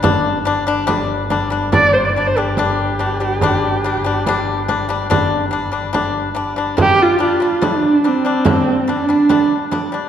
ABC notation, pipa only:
X:1
M:4/4
L:1/16
Q:1/4=71
K:none
V:1 name="Pipa"
[G,D]2 [G,D] [G,D] [G,D]2 [G,D] [G,D] [G,D]2 [G,D] [G,D] [G,D]2 [G,D] [G,D] | [G,D]2 [G,D] [G,D] [G,D]2 [G,D] [G,D] [G,D]2 [G,D] [G,D] [G,D]2 [G,D] [G,D] | [G,D]2 [G,D] [G,D] [G,D]2 [G,D] [G,D] [G,D]2 [G,D] [G,D] [G,D]2 [G,D] [G,D] |]